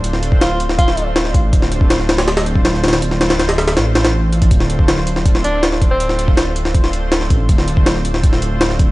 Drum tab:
HH |x---x---x---x---x---x---x---x---|x---x---x---x-x-x-x-x---x---xxx-|x---x-x-x-x-x-x-x---x-x-----x-x-|x---x---x---x---x---x---x---x---|
SD |--o-----o-----o---o-----o-o-----|--o-----o-o-o-o-o-o-----o-o-ooo-|--o-o-o-o-o-o-o-o---o-o---------|--o-----o-o---o---o-----o-o-----|
BD |------o---------o-----------o---|o-----o---------------o---------|------------------------------o-|o-----o---------o-----------o---|

HH |x---x---x---x---x---x---x---x---|x---x---x---x---x---x---x---x---|
SD |--o-----o-----o---o-----o-o-----|--o-----o-o---o---o-----o-o-----|
BD |------o---------o-----------o---|o-----o---------o-----------o---|